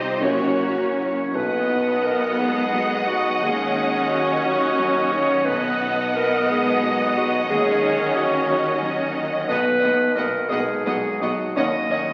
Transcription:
Already playing: grand piano C2 D#4 C5, double bass section C2, harp C3 C4 D#4 G4, viola section C4 G4, cello section D#4, violin section C5 D#5
0.21 double bass section F#1, grand piano F#2 E4 A#4, harp F#2, french horn section F#3, viola section A#3 F#4, cello section C#4, clarinet F#4, violin section C#5
0.62 harp A#3
0.98 french horn section C#4, harp E4 F#4, clarinet C#5
1.34 grand piano B1, double bass section B1, cello section B2, harp B2, viola section B3, french horn section B3, clarinet B4, violin section D#5 F#5
1.69 harp B3, grand piano D#4
2.04 grand piano B3, harp F#4, french horn section A#4, clarinet A#4
2.38 french horn section G#3, grand piano D#4, clarinet G#4, harp B4
2.73 grand piano F#3, harp D#5
3.07 french horn section F#3, grand piano D#4, clarinet F#4, harp F#4
3.41 grand piano D#2, double bass section D#2, cello section D#3, harp D#3, french horn section G#3, viola section C#4, clarinet G#4
3.76 harp C#4, grand piano D#4
4.10 french horn section F#3, clarinet F#4, harp F#4, grand piano C#5
4.45 french horn section F#3, grand piano D#4, clarinet F#4, harp C#5
4.79 grand piano F#3, harp D#5
5.12 french horn section C#4, grand piano D#4, harp F#4, clarinet C#5
5.46 grand piano B1, double bass section B1, cello section B2, harp B2, viola section B3, clarinet B4, violin section D#5 F#5
5.50 french horn section B3
5.82 harp B3, grand piano D#4
6.16 grand piano B3, harp F#4, french horn section A#4, clarinet A#4
6.49 french horn section G#3, grand piano D#4, clarinet G#4, harp B4
6.83 grand piano F#3
7.17 french horn section F#3, grand piano D#4, clarinet F#4
7.50 grand piano D#2, double bass section D#2, cello section D#3, harp D#3, french horn section G#3, viola section C#4, clarinet G#4
7.83 harp C#4, grand piano D#4
8.16 french horn section F#3, clarinet F#4, harp F#4, grand piano C#5
8.49 french horn section F#3, grand piano D#4, clarinet F#4
8.82 grand piano F#3, harp D#5
9.16 grand piano D#4, harp F#4
9.47 grand piano B1, double bass section B1, cello section B2, harp B2, viola section B3, french horn section B3, clarinet B4, violin section D#5 F#5
9.81 double bass section B1, cello section B2, harp B3, viola section B3, grand piano D#4, violin section D#5 F#5
10.15 double bass section B1, cello section B2, grand piano B3, viola section B3, harp F#4, clarinet A#4, french horn section A#4, violin section D#5 F#5
10.49 double bass section B1, cello section B2, french horn section G#3, viola section B3, grand piano D#4, clarinet G#4, harp B4, violin section D#5 F#5
10.84 double bass section B1, cello section B2, grand piano F#3, viola section B3, violin section D#5 F#5, harp D#5
11.21 double bass section B1, cello section B2, french horn section F#3, viola section B3, grand piano D#4, clarinet F#4, harp F#4, violin section D#5 F#5
11.56 double bass section D#2, grand piano D#2, cello section D#3, harp D#3, viola section C#4, french horn section D#4, clarinet D#5, violin section D#5 F#5
11.89 double bass section D#2, cello section D#3, viola section C#4, harp C#4, grand piano D#4, violin section D#5 F#5

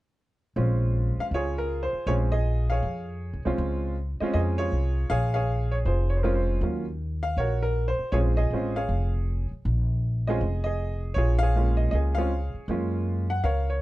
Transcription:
0.56 upright bass A#1, grand piano G#3 C4 C#4 F4
1.17 grand piano F5, muted upright bass stroke
1.31 upright bass C#2, grand piano F4 C#5
1.36 grand piano G#4
1.58 grand piano A#4
1.83 grand piano C5
1.93 muted upright bass stroke
2.07 upright bass A#1, grand piano G#3 C4 C#4 F4 G#4 C#5
2.32 grand piano G#4 D#5
2.70 grand piano G#4 C#5 F5
2.83 upright bass F2
3.33 upright bass C#2
3.45 upright bass C2, grand piano G#3 C4 C#4 F4
3.58 upright bass C#2
4.20 grand piano G#3 C4 C#4 F4 D#5, muted upright bass stroke
4.34 upright bass F2, grand piano G#4 D#5
4.58 grand piano F4 G#4 C#5
4.72 upright bass C2
5.10 upright bass A#1, grand piano G#4 C#5 F5
5.34 grand piano G#4 C#5 F5
5.71 grand piano C#5
5.85 upright bass F1, grand piano F4 G#4 C5
6.10 grand piano C#5
6.17 grand piano C5
6.23 grand piano G#3 C4 C#4 F4 A#4
6.34 grand piano C5
6.61 upright bass D#2, grand piano F#3 A#3 C#4 F4
7.23 grand piano F5
7.37 upright bass A#1, grand piano F#4 A#4 C#5
7.63 grand piano A#4
7.88 grand piano C5
7.99 muted upright bass stroke
8.12 upright bass A#1, grand piano G#3 C4 C#4 F4 G#4 C#5
8.37 grand piano G#4 D#5
8.51 upright bass A1, grand piano G#3 C4 C#4 F4
8.76 grand piano G#4 C#5 F5
8.89 upright bass F1
9.51 muted upright bass stroke
9.65 upright bass A#1
10.27 grand piano G#3 C4 C#4 F4 G#4 D#5
10.41 upright bass F1
10.64 grand piano G#4 D#5
11.14 upright bass A#1, grand piano F4 G#4 C#5
11.39 grand piano C#5 F5
11.43 grand piano G#4
11.56 grand piano G#3 A#3 C#4 F4
11.77 grand piano D#5
11.91 upright bass C#2, grand piano G#4 D#5
12.15 grand piano G#3 C4 C#4 G#4 C#5 F5
12.19 grand piano F4
12.54 muted upright bass stroke
12.68 upright bass F#2, grand piano G#3 A#3 C#4 F4
13.30 grand piano F#5
13.44 upright bass C#2, grand piano A#4 C#5 F5
13.70 grand piano C#5

